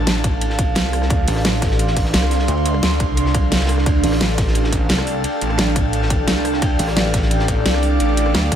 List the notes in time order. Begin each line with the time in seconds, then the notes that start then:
Already playing: A1 D4 A4 D5 F5 A5
0.07 snare, closed hi-hat, ride
0.24 kick, closed hi-hat, ride
0.41 closed hi-hat, ride
0.50 snare
0.58 kick, closed hi-hat, ride
0.75 C2, snare, closed hi-hat, ride
0.85 snare
0.93 cross-stick, open hi-hat, ride
1.02 cross-stick, snare
1.10 D2, kick, closed hi-hat, ride
1.27 A1 C6, closed hi-hat, open hi-hat
1.36 cross-stick, snare
1.44 snare, closed hi-hat, ride
1.54 snare
1.62 kick, snare, closed hi-hat, ride
1.71 snare
1.79 closed hi-hat, ride
1.87 snare
1.97 kick, closed hi-hat, open hi-hat
2.05 snare
2.14 C2, snare, closed hi-hat, ride
2.22 cross-stick, snare
2.31 snare, open hi-hat, ride
2.39 snare
2.48 D2, closed hi-hat, ride
2.57 ride
2.65 closed hi-hat, ride
2.74 cross-stick, ride
2.83 D2, snare, closed hi-hat, ride
3.00 C2, kick, closed hi-hat, ride
3.17 closed hi-hat, ride
3.26 snare
3.34 kick, closed hi-hat, ride
3.52 snare, closed hi-hat, ride
3.56 snare, ride
3.60 snare, ride
3.65 snare, ride
3.69 cross-stick, open hi-hat, ride
3.78 cross-stick, snare
3.86 D2 G5, kick, closed hi-hat, ride
4.04 A1 A5, closed hi-hat, open hi-hat
4.12 cross-stick, snare
4.20 snare, closed hi-hat, ride
4.29 snare
4.38 kick, snare, closed hi-hat, ride
4.48 snare
4.55 closed hi-hat, ride
4.64 snare
4.72 kick, closed hi-hat, ride
4.89 C2, snare, closed hi-hat, ride
4.98 cross-stick, snare
5.07 open hi-hat, ride
5.24 closed hi-hat, ride
5.33 ride
5.41 A1, closed hi-hat, ride
5.50 cross-stick, ride
5.58 snare, closed hi-hat, ride
5.76 kick, closed hi-hat, ride
5.93 closed hi-hat, ride
6.02 snare
6.10 kick, closed hi-hat, ride
6.27 C2, snare, closed hi-hat, ride
6.36 snare
6.45 cross-stick, open hi-hat, ride
6.53 cross-stick, snare
6.62 D2, kick, closed hi-hat, ride
6.79 A1 D6, closed hi-hat, open hi-hat
6.88 cross-stick, snare
6.97 snare, closed hi-hat, ride
7.06 snare
7.14 kick, snare, closed hi-hat, ride
7.22 snare
7.31 closed hi-hat, ride
7.39 snare
7.48 kick, closed hi-hat, ride
7.66 C2, snare, closed hi-hat, ride
7.74 cross-stick, snare
7.83 open hi-hat, ride
8.00 A1, closed hi-hat, ride
8.09 ride
8.17 closed hi-hat, ride
8.26 cross-stick, ride
8.34 D2, snare, closed hi-hat, ride
8.52 D2, kick, closed hi-hat, ride